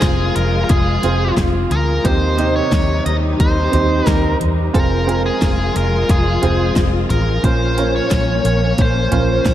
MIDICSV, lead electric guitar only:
0, 0, Header, 1, 2, 480
1, 0, Start_track
1, 0, Key_signature, -4, "minor"
1, 0, Tempo, 674309
1, 1456, Time_signature, 4, 2, 24, 8
1, 6792, End_track
2, 0, Start_track
2, 0, Title_t, "Lead electric guitar"
2, 0, Program_c, 0, 29
2, 0, Note_on_c, 0, 68, 78
2, 253, Note_off_c, 0, 68, 0
2, 256, Note_on_c, 0, 70, 83
2, 448, Note_off_c, 0, 70, 0
2, 457, Note_on_c, 0, 70, 55
2, 499, Note_off_c, 0, 70, 0
2, 502, Note_on_c, 0, 68, 68
2, 950, Note_off_c, 0, 68, 0
2, 1223, Note_on_c, 0, 70, 65
2, 1463, Note_on_c, 0, 72, 73
2, 1466, Note_off_c, 0, 70, 0
2, 1818, Note_off_c, 0, 72, 0
2, 1821, Note_on_c, 0, 73, 72
2, 2153, Note_off_c, 0, 73, 0
2, 2178, Note_on_c, 0, 75, 82
2, 2242, Note_off_c, 0, 75, 0
2, 2423, Note_on_c, 0, 72, 67
2, 2907, Note_off_c, 0, 72, 0
2, 2907, Note_on_c, 0, 70, 67
2, 3111, Note_off_c, 0, 70, 0
2, 3381, Note_on_c, 0, 70, 85
2, 3713, Note_off_c, 0, 70, 0
2, 3743, Note_on_c, 0, 68, 73
2, 4104, Note_off_c, 0, 68, 0
2, 4106, Note_on_c, 0, 70, 74
2, 4344, Note_off_c, 0, 70, 0
2, 4347, Note_on_c, 0, 68, 72
2, 4792, Note_off_c, 0, 68, 0
2, 5057, Note_on_c, 0, 70, 74
2, 5299, Note_off_c, 0, 70, 0
2, 5302, Note_on_c, 0, 72, 91
2, 5662, Note_off_c, 0, 72, 0
2, 5665, Note_on_c, 0, 73, 89
2, 6015, Note_off_c, 0, 73, 0
2, 6023, Note_on_c, 0, 73, 89
2, 6266, Note_off_c, 0, 73, 0
2, 6277, Note_on_c, 0, 72, 84
2, 6792, Note_off_c, 0, 72, 0
2, 6792, End_track
0, 0, End_of_file